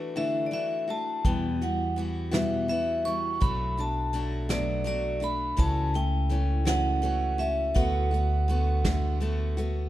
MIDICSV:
0, 0, Header, 1, 5, 480
1, 0, Start_track
1, 0, Tempo, 723764
1, 829, Time_signature, 6, 3, 24, 8
1, 6560, End_track
2, 0, Start_track
2, 0, Title_t, "Vibraphone"
2, 0, Program_c, 0, 11
2, 0, Note_on_c, 0, 71, 63
2, 112, Note_on_c, 0, 76, 81
2, 130, Note_off_c, 0, 71, 0
2, 291, Note_off_c, 0, 76, 0
2, 308, Note_on_c, 0, 74, 53
2, 351, Note_off_c, 0, 74, 0
2, 355, Note_on_c, 0, 76, 72
2, 599, Note_off_c, 0, 76, 0
2, 600, Note_on_c, 0, 81, 80
2, 832, Note_on_c, 0, 79, 68
2, 841, Note_off_c, 0, 81, 0
2, 1077, Note_on_c, 0, 78, 65
2, 1078, Note_off_c, 0, 79, 0
2, 1296, Note_off_c, 0, 78, 0
2, 1544, Note_on_c, 0, 76, 67
2, 1778, Note_off_c, 0, 76, 0
2, 1786, Note_on_c, 0, 76, 75
2, 2025, Note_on_c, 0, 85, 89
2, 2035, Note_off_c, 0, 76, 0
2, 2266, Note_on_c, 0, 83, 86
2, 2274, Note_off_c, 0, 85, 0
2, 2514, Note_off_c, 0, 83, 0
2, 2523, Note_on_c, 0, 81, 76
2, 2739, Note_off_c, 0, 81, 0
2, 2988, Note_on_c, 0, 74, 83
2, 3224, Note_off_c, 0, 74, 0
2, 3232, Note_on_c, 0, 74, 74
2, 3474, Note_on_c, 0, 83, 85
2, 3477, Note_off_c, 0, 74, 0
2, 3712, Note_on_c, 0, 81, 88
2, 3718, Note_off_c, 0, 83, 0
2, 3933, Note_off_c, 0, 81, 0
2, 3949, Note_on_c, 0, 79, 92
2, 4428, Note_on_c, 0, 78, 92
2, 4442, Note_off_c, 0, 79, 0
2, 4903, Note_on_c, 0, 76, 86
2, 4922, Note_off_c, 0, 78, 0
2, 5141, Note_on_c, 0, 78, 72
2, 5152, Note_off_c, 0, 76, 0
2, 6076, Note_off_c, 0, 78, 0
2, 6560, End_track
3, 0, Start_track
3, 0, Title_t, "Steel-string acoustic guitar"
3, 0, Program_c, 1, 25
3, 0, Note_on_c, 1, 52, 49
3, 0, Note_on_c, 1, 57, 51
3, 0, Note_on_c, 1, 62, 58
3, 0, Note_on_c, 1, 66, 53
3, 96, Note_off_c, 1, 66, 0
3, 101, Note_off_c, 1, 62, 0
3, 103, Note_off_c, 1, 57, 0
3, 104, Note_on_c, 1, 66, 61
3, 105, Note_off_c, 1, 52, 0
3, 109, Note_on_c, 1, 62, 64
3, 111, Note_on_c, 1, 57, 60
3, 112, Note_on_c, 1, 52, 50
3, 116, Note_on_c, 1, 50, 50
3, 330, Note_off_c, 1, 52, 0
3, 336, Note_off_c, 1, 57, 0
3, 338, Note_on_c, 1, 52, 55
3, 343, Note_on_c, 1, 57, 54
3, 344, Note_off_c, 1, 62, 0
3, 347, Note_off_c, 1, 66, 0
3, 352, Note_on_c, 1, 62, 58
3, 353, Note_off_c, 1, 50, 0
3, 353, Note_on_c, 1, 66, 54
3, 572, Note_off_c, 1, 66, 0
3, 580, Note_on_c, 1, 66, 45
3, 581, Note_off_c, 1, 62, 0
3, 583, Note_off_c, 1, 52, 0
3, 586, Note_off_c, 1, 57, 0
3, 589, Note_on_c, 1, 62, 40
3, 595, Note_on_c, 1, 57, 40
3, 825, Note_off_c, 1, 66, 0
3, 827, Note_on_c, 1, 47, 69
3, 828, Note_on_c, 1, 40, 63
3, 829, Note_off_c, 1, 62, 0
3, 830, Note_off_c, 1, 57, 0
3, 832, Note_on_c, 1, 52, 71
3, 833, Note_on_c, 1, 55, 62
3, 836, Note_on_c, 1, 59, 64
3, 1068, Note_off_c, 1, 40, 0
3, 1068, Note_off_c, 1, 47, 0
3, 1070, Note_off_c, 1, 52, 0
3, 1070, Note_off_c, 1, 59, 0
3, 1071, Note_off_c, 1, 55, 0
3, 1071, Note_on_c, 1, 66, 41
3, 1078, Note_on_c, 1, 59, 43
3, 1084, Note_on_c, 1, 55, 41
3, 1087, Note_on_c, 1, 52, 37
3, 1294, Note_off_c, 1, 52, 0
3, 1302, Note_off_c, 1, 55, 0
3, 1302, Note_on_c, 1, 52, 57
3, 1304, Note_off_c, 1, 59, 0
3, 1309, Note_on_c, 1, 55, 61
3, 1310, Note_off_c, 1, 66, 0
3, 1312, Note_on_c, 1, 59, 57
3, 1320, Note_on_c, 1, 66, 68
3, 1527, Note_off_c, 1, 66, 0
3, 1531, Note_off_c, 1, 59, 0
3, 1535, Note_on_c, 1, 66, 65
3, 1536, Note_off_c, 1, 55, 0
3, 1537, Note_off_c, 1, 52, 0
3, 1539, Note_on_c, 1, 59, 62
3, 1544, Note_on_c, 1, 47, 54
3, 1544, Note_on_c, 1, 52, 55
3, 1544, Note_on_c, 1, 55, 62
3, 1548, Note_on_c, 1, 40, 54
3, 1771, Note_off_c, 1, 52, 0
3, 1779, Note_on_c, 1, 52, 49
3, 1780, Note_off_c, 1, 55, 0
3, 1782, Note_off_c, 1, 66, 0
3, 1784, Note_off_c, 1, 59, 0
3, 1786, Note_off_c, 1, 47, 0
3, 1788, Note_off_c, 1, 40, 0
3, 1788, Note_on_c, 1, 55, 61
3, 1794, Note_on_c, 1, 59, 58
3, 1798, Note_on_c, 1, 66, 65
3, 2014, Note_off_c, 1, 66, 0
3, 2016, Note_off_c, 1, 59, 0
3, 2022, Note_on_c, 1, 66, 46
3, 2024, Note_off_c, 1, 52, 0
3, 2024, Note_on_c, 1, 59, 47
3, 2026, Note_off_c, 1, 55, 0
3, 2034, Note_on_c, 1, 55, 40
3, 2036, Note_on_c, 1, 52, 37
3, 2258, Note_off_c, 1, 52, 0
3, 2258, Note_on_c, 1, 47, 59
3, 2261, Note_off_c, 1, 55, 0
3, 2261, Note_off_c, 1, 66, 0
3, 2261, Note_on_c, 1, 54, 56
3, 2262, Note_off_c, 1, 59, 0
3, 2264, Note_on_c, 1, 57, 72
3, 2264, Note_on_c, 1, 62, 75
3, 2269, Note_on_c, 1, 66, 66
3, 2495, Note_off_c, 1, 66, 0
3, 2503, Note_off_c, 1, 47, 0
3, 2503, Note_on_c, 1, 66, 42
3, 2505, Note_off_c, 1, 54, 0
3, 2506, Note_off_c, 1, 57, 0
3, 2506, Note_off_c, 1, 62, 0
3, 2514, Note_on_c, 1, 62, 40
3, 2519, Note_on_c, 1, 57, 33
3, 2735, Note_off_c, 1, 57, 0
3, 2739, Note_on_c, 1, 54, 54
3, 2740, Note_off_c, 1, 62, 0
3, 2743, Note_on_c, 1, 57, 62
3, 2745, Note_off_c, 1, 66, 0
3, 2748, Note_on_c, 1, 62, 57
3, 2753, Note_on_c, 1, 66, 68
3, 2970, Note_off_c, 1, 66, 0
3, 2972, Note_off_c, 1, 62, 0
3, 2977, Note_off_c, 1, 57, 0
3, 2978, Note_on_c, 1, 66, 71
3, 2979, Note_off_c, 1, 54, 0
3, 2980, Note_on_c, 1, 62, 59
3, 2985, Note_on_c, 1, 57, 64
3, 2987, Note_on_c, 1, 54, 56
3, 2990, Note_on_c, 1, 47, 62
3, 3204, Note_off_c, 1, 54, 0
3, 3210, Note_off_c, 1, 57, 0
3, 3211, Note_on_c, 1, 54, 54
3, 3215, Note_off_c, 1, 62, 0
3, 3218, Note_on_c, 1, 57, 57
3, 3220, Note_off_c, 1, 66, 0
3, 3223, Note_on_c, 1, 62, 64
3, 3228, Note_on_c, 1, 66, 61
3, 3229, Note_off_c, 1, 47, 0
3, 3441, Note_off_c, 1, 66, 0
3, 3448, Note_off_c, 1, 62, 0
3, 3449, Note_on_c, 1, 66, 50
3, 3456, Note_off_c, 1, 57, 0
3, 3456, Note_on_c, 1, 62, 46
3, 3460, Note_off_c, 1, 54, 0
3, 3464, Note_on_c, 1, 57, 39
3, 3691, Note_on_c, 1, 49, 62
3, 3694, Note_off_c, 1, 57, 0
3, 3696, Note_on_c, 1, 52, 76
3, 3698, Note_off_c, 1, 66, 0
3, 3700, Note_off_c, 1, 62, 0
3, 3702, Note_on_c, 1, 57, 71
3, 3703, Note_on_c, 1, 61, 74
3, 3708, Note_on_c, 1, 66, 73
3, 3932, Note_off_c, 1, 61, 0
3, 3938, Note_off_c, 1, 57, 0
3, 3939, Note_off_c, 1, 49, 0
3, 3940, Note_on_c, 1, 61, 48
3, 3942, Note_off_c, 1, 52, 0
3, 3946, Note_on_c, 1, 57, 39
3, 3947, Note_off_c, 1, 66, 0
3, 4171, Note_off_c, 1, 57, 0
3, 4175, Note_on_c, 1, 52, 55
3, 4179, Note_off_c, 1, 61, 0
3, 4179, Note_on_c, 1, 57, 59
3, 4187, Note_on_c, 1, 61, 67
3, 4412, Note_off_c, 1, 52, 0
3, 4412, Note_off_c, 1, 61, 0
3, 4413, Note_off_c, 1, 57, 0
3, 4413, Note_on_c, 1, 66, 69
3, 4419, Note_on_c, 1, 61, 63
3, 4420, Note_on_c, 1, 52, 55
3, 4421, Note_on_c, 1, 57, 59
3, 4427, Note_on_c, 1, 49, 55
3, 4647, Note_off_c, 1, 52, 0
3, 4653, Note_off_c, 1, 57, 0
3, 4655, Note_on_c, 1, 52, 58
3, 4658, Note_off_c, 1, 61, 0
3, 4660, Note_off_c, 1, 66, 0
3, 4661, Note_on_c, 1, 57, 62
3, 4666, Note_on_c, 1, 61, 66
3, 4667, Note_off_c, 1, 49, 0
3, 4673, Note_on_c, 1, 66, 60
3, 4887, Note_off_c, 1, 66, 0
3, 4895, Note_on_c, 1, 66, 54
3, 4897, Note_off_c, 1, 61, 0
3, 4901, Note_off_c, 1, 52, 0
3, 4904, Note_off_c, 1, 57, 0
3, 4905, Note_on_c, 1, 61, 46
3, 4913, Note_on_c, 1, 57, 38
3, 5134, Note_off_c, 1, 57, 0
3, 5136, Note_on_c, 1, 50, 74
3, 5141, Note_off_c, 1, 66, 0
3, 5142, Note_on_c, 1, 57, 77
3, 5145, Note_off_c, 1, 61, 0
3, 5147, Note_on_c, 1, 59, 82
3, 5149, Note_on_c, 1, 66, 87
3, 5370, Note_off_c, 1, 66, 0
3, 5378, Note_on_c, 1, 66, 47
3, 5380, Note_off_c, 1, 59, 0
3, 5381, Note_off_c, 1, 50, 0
3, 5384, Note_off_c, 1, 57, 0
3, 5388, Note_on_c, 1, 59, 45
3, 5397, Note_on_c, 1, 57, 39
3, 5622, Note_off_c, 1, 66, 0
3, 5623, Note_on_c, 1, 50, 58
3, 5624, Note_off_c, 1, 57, 0
3, 5627, Note_off_c, 1, 59, 0
3, 5632, Note_on_c, 1, 57, 61
3, 5637, Note_on_c, 1, 59, 65
3, 5640, Note_on_c, 1, 66, 67
3, 5860, Note_off_c, 1, 66, 0
3, 5863, Note_off_c, 1, 59, 0
3, 5865, Note_off_c, 1, 50, 0
3, 5868, Note_on_c, 1, 66, 78
3, 5869, Note_off_c, 1, 57, 0
3, 5871, Note_on_c, 1, 59, 67
3, 5878, Note_on_c, 1, 57, 72
3, 5881, Note_on_c, 1, 50, 68
3, 6097, Note_off_c, 1, 50, 0
3, 6103, Note_off_c, 1, 57, 0
3, 6105, Note_on_c, 1, 50, 66
3, 6106, Note_off_c, 1, 59, 0
3, 6107, Note_off_c, 1, 66, 0
3, 6111, Note_on_c, 1, 57, 64
3, 6114, Note_on_c, 1, 59, 64
3, 6119, Note_on_c, 1, 66, 68
3, 6339, Note_off_c, 1, 66, 0
3, 6345, Note_off_c, 1, 50, 0
3, 6346, Note_off_c, 1, 59, 0
3, 6347, Note_on_c, 1, 66, 57
3, 6348, Note_off_c, 1, 57, 0
3, 6354, Note_on_c, 1, 59, 54
3, 6360, Note_on_c, 1, 57, 43
3, 6560, Note_off_c, 1, 57, 0
3, 6560, Note_off_c, 1, 59, 0
3, 6560, Note_off_c, 1, 66, 0
3, 6560, End_track
4, 0, Start_track
4, 0, Title_t, "Upright bass"
4, 0, Program_c, 2, 32
4, 828, Note_on_c, 2, 40, 67
4, 2242, Note_off_c, 2, 40, 0
4, 2268, Note_on_c, 2, 35, 68
4, 3681, Note_off_c, 2, 35, 0
4, 3703, Note_on_c, 2, 37, 74
4, 5118, Note_off_c, 2, 37, 0
4, 5144, Note_on_c, 2, 38, 80
4, 6557, Note_off_c, 2, 38, 0
4, 6560, End_track
5, 0, Start_track
5, 0, Title_t, "Drums"
5, 827, Note_on_c, 9, 36, 71
5, 828, Note_on_c, 9, 42, 55
5, 893, Note_off_c, 9, 36, 0
5, 894, Note_off_c, 9, 42, 0
5, 1071, Note_on_c, 9, 42, 43
5, 1138, Note_off_c, 9, 42, 0
5, 1309, Note_on_c, 9, 42, 41
5, 1376, Note_off_c, 9, 42, 0
5, 1551, Note_on_c, 9, 38, 94
5, 1551, Note_on_c, 9, 42, 65
5, 1617, Note_off_c, 9, 38, 0
5, 1617, Note_off_c, 9, 42, 0
5, 1792, Note_on_c, 9, 42, 41
5, 1858, Note_off_c, 9, 42, 0
5, 2035, Note_on_c, 9, 42, 47
5, 2102, Note_off_c, 9, 42, 0
5, 2267, Note_on_c, 9, 36, 83
5, 2269, Note_on_c, 9, 42, 61
5, 2333, Note_off_c, 9, 36, 0
5, 2335, Note_off_c, 9, 42, 0
5, 2507, Note_on_c, 9, 42, 45
5, 2573, Note_off_c, 9, 42, 0
5, 2743, Note_on_c, 9, 42, 51
5, 2809, Note_off_c, 9, 42, 0
5, 2983, Note_on_c, 9, 38, 94
5, 2983, Note_on_c, 9, 42, 70
5, 3049, Note_off_c, 9, 38, 0
5, 3049, Note_off_c, 9, 42, 0
5, 3225, Note_on_c, 9, 42, 49
5, 3291, Note_off_c, 9, 42, 0
5, 3462, Note_on_c, 9, 42, 47
5, 3528, Note_off_c, 9, 42, 0
5, 3704, Note_on_c, 9, 36, 77
5, 3707, Note_on_c, 9, 42, 59
5, 3770, Note_off_c, 9, 36, 0
5, 3773, Note_off_c, 9, 42, 0
5, 3945, Note_on_c, 9, 42, 48
5, 4011, Note_off_c, 9, 42, 0
5, 4188, Note_on_c, 9, 42, 48
5, 4254, Note_off_c, 9, 42, 0
5, 4423, Note_on_c, 9, 38, 91
5, 4423, Note_on_c, 9, 42, 71
5, 4489, Note_off_c, 9, 38, 0
5, 4489, Note_off_c, 9, 42, 0
5, 4663, Note_on_c, 9, 42, 49
5, 4729, Note_off_c, 9, 42, 0
5, 4908, Note_on_c, 9, 42, 48
5, 4974, Note_off_c, 9, 42, 0
5, 5145, Note_on_c, 9, 36, 88
5, 5146, Note_on_c, 9, 42, 64
5, 5211, Note_off_c, 9, 36, 0
5, 5212, Note_off_c, 9, 42, 0
5, 5396, Note_on_c, 9, 42, 47
5, 5462, Note_off_c, 9, 42, 0
5, 5630, Note_on_c, 9, 42, 45
5, 5697, Note_off_c, 9, 42, 0
5, 5866, Note_on_c, 9, 36, 65
5, 5867, Note_on_c, 9, 38, 100
5, 5867, Note_on_c, 9, 42, 67
5, 5932, Note_off_c, 9, 36, 0
5, 5933, Note_off_c, 9, 38, 0
5, 5933, Note_off_c, 9, 42, 0
5, 6110, Note_on_c, 9, 42, 47
5, 6176, Note_off_c, 9, 42, 0
5, 6351, Note_on_c, 9, 42, 52
5, 6418, Note_off_c, 9, 42, 0
5, 6560, End_track
0, 0, End_of_file